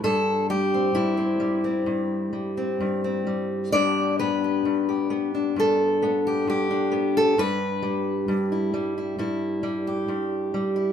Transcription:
0.04 0.94 G2 medium
0.04 0.49 A4 medium
0.50 1.39 G3 medium
0.50 1.86 G4 medium
0.74 1.16 C4 soft
0.95 1.86 G2 medium
0.95 3.73 E4 medium
1.17 1.63 C4 soft
1.40 2.32 G3 medium
1.64 2.56 C4 soft
1.86 2.80 G2 medium
2.33 3.26 G3 soft
2.57 3.03 C4 soft
2.80 3.73 G2 medium
3.04 3.68 C4 soft
3.27 3.74 G3 soft
3.72 4.65 G2 medium
3.72 4.20 B3 soft
3.72 5.33 D4 soft
3.72 4.44 G4 soft
3.72 4.19 D5 loud
4.19 5.10 B3 medium
4.19 6.03 B4 medium
4.44 4.88 G4 soft
4.65 5.56 G2 medium
4.89 5.59 G4 soft
5.10 6.01 B3 medium
5.35 6.69 D4 soft
5.56 6.46 G2 medium
5.56 7.16 A4 medium
6.02 6.90 B3 soft
6.27 6.48 G4 medium
6.47 7.37 G2 medium
6.47 7.39 G4 medium
6.71 7.33 D4 soft
6.92 7.32 B3 soft
7.17 7.39 A4 medium
7.38 8.27 G2 medium
7.38 9.87 B4 medium
7.82 8.72 G3 medium
8.28 9.17 G2 medium
8.52 8.97 E4 soft
8.74 9.62 G3 medium
8.98 9.19 E4 soft
9.19 10.07 G2 medium
9.19 10.75 E4 soft
9.63 10.53 G3 medium
9.87 10.93 G4 soft
10.08 10.93 G2 medium
10.54 10.93 G3 medium
10.76 10.93 E4 soft

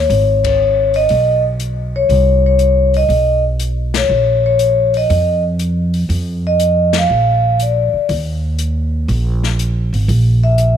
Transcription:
0.00 0.42 C#5 medium
0.10 1.05 G#1 medium
0.10 open hi-hat soft
0.44 0.92 C#5 medium
0.44 kick medium
0.44 ride medium
0.94 1.42 D#5 medium
0.94 open hi-hat soft
1.09 2.06 B1 medium
1.09 open hi-hat soft
1.60 closed hi-hat soft
1.96 2.41 C#5 medium
2.09 3.05 C2 medium
2.09 open hi-hat soft
2.46 2.92 C#5 medium
2.59 closed hi-hat soft
2.94 3.42 D#5 medium
2.94 open hi-hat soft
3.09 4.05 B1 medium
3.09 open hi-hat soft
3.60 closed hi-hat soft
3.94 4.42 C#5 medium
3.94 snare medium
3.94 ride medium
4.09 5.05 A#1 medium
4.46 4.91 C#5 medium
4.59 closed hi-hat soft
4.94 5.42 D#5 medium
4.94 open hi-hat soft
5.10 6.05 F2 medium
5.10 open hi-hat soft
5.59 closed hi-hat soft
5.94 open hi-hat soft
6.09 7.05 F2 medium
6.09 open hi-hat soft
6.47 6.92 D#5 medium
6.60 closed hi-hat soft
6.93 snare medium
6.93 ride medium
6.98 7.57 F5 medium
7.10 7.90 A#1 medium
7.60 8.07 D5 medium
7.60 closed hi-hat soft
7.93 muted upright bass stroke soft
8.09 9.05 D#2 medium
8.09 open hi-hat soft
8.59 closed hi-hat soft
9.08 9.89 A#1 medium
9.08 open hi-hat soft
9.43 snare soft
9.59 closed hi-hat soft
9.93 10.07 G#1 medium
9.93 open hi-hat soft
10.08 10.77 A#1 medium
10.08 open hi-hat soft
10.44 10.77 E5 medium
10.58 closed hi-hat soft

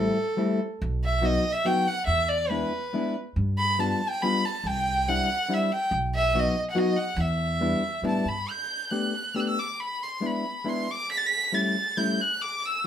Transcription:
0.00 0.17 G3 medium
0.00 0.17 A3 soft
0.00 0.17 C4 soft
0.00 0.17 E4 soft
0.00 0.57 A4 medium
0.37 0.59 G3 medium
0.37 0.59 A3 soft
0.37 0.59 C4 medium
0.37 0.59 E4 medium
0.82 1.36 B1 loud
1.04 1.27 E5 medium
1.21 1.43 F#3 soft
1.21 1.44 B3 soft
1.21 1.44 D#4 medium
1.21 1.44 F#4 medium
1.21 1.54 D#5 medium
1.52 1.67 E5 medium
1.65 1.86 F#3 medium
1.65 1.86 B3 medium
1.65 1.87 D#4 medium
1.65 1.87 F#4 medium
1.65 1.89 G5 medium
1.88 2.06 F#5 medium
2.07 2.62 E2 medium
2.07 2.30 E5 medium
2.29 2.51 D5 medium
2.50 2.71 G#3 medium
2.50 2.71 B3 soft
2.50 2.71 D4 soft
2.50 2.72 E4 medium
2.50 3.14 B4 medium
2.93 3.15 G#3 medium
2.93 3.15 B3 soft
2.93 3.15 D4 medium
2.93 3.15 E4 medium
3.36 3.92 G2 medium
3.58 3.82 B5 medium
3.79 4.00 G3 soft
3.79 4.00 B3 soft
3.79 4.00 D4 soft
3.79 4.01 F4 soft
3.79 4.11 A5 medium
4.09 4.24 G5 medium
4.22 4.43 G3 medium
4.22 4.44 B3 medium
4.22 4.44 D4 soft
4.22 4.44 F4 medium
4.22 4.47 B5 medium
4.45 4.68 A5 medium
4.64 5.19 C2 medium
4.64 5.10 G5 medium
5.08 5.28 G3 medium
5.08 5.29 C4 soft
5.08 5.28 D4 soft
5.08 5.29 E4 medium
5.08 5.55 F#5 medium
5.49 5.70 G3 medium
5.49 5.70 C4 soft
5.49 5.69 D4 medium
5.49 5.70 E4 medium
5.54 5.73 E5 medium
5.72 5.92 G5 medium
5.91 6.46 B1 loud
6.15 6.41 E5 medium
6.35 6.55 F#3 medium
6.35 6.55 B3 medium
6.35 6.55 D#4 soft
6.35 6.55 F#4 medium
6.39 6.64 D#5 medium
6.70 6.80 F#5 medium
6.75 6.96 F#3 medium
6.75 6.96 B3 medium
6.75 6.96 D#4 medium
6.75 6.96 F#4 medium
6.75 6.99 D#5 medium
6.97 7.21 F#5 medium
7.16 7.73 E2 loud
7.16 8.05 E5 medium
7.61 7.82 G3 soft
7.61 7.82 B3 soft
7.61 7.82 D4 medium
7.61 7.82 E4 medium
8.02 8.22 A2 medium
8.02 8.25 G3 medium
8.02 8.25 B3 medium
8.02 8.25 D4 medium
8.02 8.26 E4 medium
8.07 8.30 A5 medium
8.25 8.45 G2 medium
8.25 8.51 B5 medium
8.50 8.92 G6 medium
8.91 9.13 A3 soft
8.91 9.13 B3 soft
8.91 9.13 D4 soft
8.91 9.13 G4 soft
8.91 9.37 F#6 medium
9.34 9.57 A3 soft
9.34 9.57 B3 soft
9.34 9.57 D4 soft
9.34 9.57 G4 medium
9.34 9.41 E6 medium
9.40 9.49 F#6 soft
9.47 9.61 E6 medium
9.59 9.82 D6 medium
9.80 10.05 B5 medium
10.03 10.28 C6 medium
10.21 10.44 G#3 medium
10.21 10.44 B3 soft
10.21 10.44 D4 soft
10.21 10.45 E4 soft
10.26 10.70 B5 medium
10.64 10.87 G#3 medium
10.64 10.88 B3 soft
10.64 10.88 D4 soft
10.64 10.88 E4 medium
10.68 10.92 C6 medium
10.91 11.11 D6 medium
11.11 11.19 B6 medium
11.17 11.28 A6 medium
11.26 11.56 B6 medium
11.52 11.75 G3 medium
11.52 11.75 A3 soft
11.52 11.75 C#4 soft
11.52 11.75 E4 soft
11.52 11.99 A6 medium
11.97 12.19 G3 soft
11.97 12.19 A3 soft
11.97 12.19 C#4 medium
11.97 12.19 E4 medium
11.97 12.23 G6 medium
12.21 12.43 F#6 medium
12.42 12.67 D6 medium
12.66 12.87 E6 medium

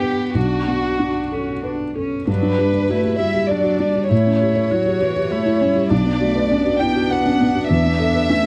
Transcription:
0.00 0.31 G2 medium
0.00 0.37 B3 medium
0.00 0.38 B3 soft
0.00 0.38 D4 soft
0.00 0.35 G4 medium
0.00 0.38 B4 soft
0.35 2.24 B1 soft
0.35 0.94 D4 soft
0.35 1.64 F#4 medium
0.67 1.19 B3 soft
1.00 1.51 D4 soft
1.00 1.34 D4 soft
1.32 1.64 C#4 soft
1.32 1.83 A4 soft
1.63 1.96 D4 soft
1.63 2.15 B4 soft
1.95 2.28 C#4 soft
1.95 2.28 A4 soft
2.27 4.07 G2 soft
2.27 2.62 F#3 soft
2.27 2.92 D4 soft
2.27 3.16 B4 medium
2.42 2.68 D4 soft
2.58 2.90 G3 soft
2.58 2.83 G4 soft
2.73 2.98 D5 soft
2.89 3.20 A3 soft
2.89 3.52 E4 soft
2.89 3.14 F#4 soft
3.04 3.29 G4 soft
3.19 3.52 G3 soft
3.19 3.35 F#4 soft
3.19 3.50 E5 medium
3.34 3.59 G4 soft
3.49 3.81 F#3 soft
3.49 4.11 D4 soft
3.49 3.74 D5 soft
3.49 4.11 D5 medium
3.64 3.89 F#4 soft
3.80 4.12 G3 soft
3.80 4.04 D4 soft
3.95 4.11 G4 soft
4.10 5.87 A2 medium
4.10 4.73 A3 soft
4.10 4.73 E4 soft
4.10 5.87 C#5 medium
4.26 4.51 C#4 soft
4.41 4.65 G4 soft
4.55 4.80 C#5 soft
4.71 5.03 F#3 soft
4.71 4.95 E4 soft
4.71 5.33 F#4 soft
4.86 5.10 G4 soft
5.01 5.33 E3 soft
5.01 5.16 F#4 soft
5.16 5.41 G4 soft
5.31 5.63 A3 soft
5.31 5.92 E4 soft
5.31 5.55 C#5 soft
5.46 5.70 E4 soft
5.61 5.92 G3 medium
5.61 5.85 C#4 soft
5.76 5.91 G4 soft
5.91 7.65 B1 medium
5.91 6.23 F#3 soft
5.91 6.50 D4 medium
5.91 6.79 D5 medium
6.05 6.30 B3 soft
6.20 6.52 A3 soft
6.20 6.45 F#4 soft
6.36 6.60 B4 soft
6.51 6.80 B3 soft
6.51 6.75 C#4 soft
6.51 8.31 D4 medium
6.66 6.90 F#4 soft
6.80 8.26 B3 soft
6.80 6.95 E4 soft
6.80 7.10 G5 medium
6.96 7.19 F#4 soft
7.09 7.34 B4 soft
7.09 7.69 F#5 medium
7.26 7.49 C#4 soft
7.40 7.64 B3 soft
7.55 7.70 F#4 soft
7.68 8.46 E2 medium
7.68 8.46 E5 medium
7.85 8.09 B3 soft
7.99 8.23 A4 soft
8.15 8.38 B4 soft
8.30 8.46 A3 soft
8.30 8.46 C#4 medium
8.30 8.46 D4 soft

